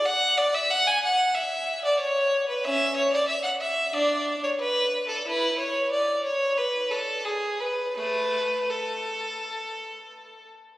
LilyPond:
\new Staff \with { instrumentName = "Violin" } { \time 4/4 \key a \major \tempo 4 = 91 fis''8 d''16 e''16 fis''16 gis''16 fis''8 e''8. d''16 cis''8. b'16 | <cis' e''>8 cis''16 d''16 e''16 fis''16 e''8 <d' d''>8. cis''16 b'8. a'16 | <e' b'>8 cis''8 d''8 cis''8 b'8 a'8 gis'8 b'8 | <a b'>4 a'2~ a'8 r8 | }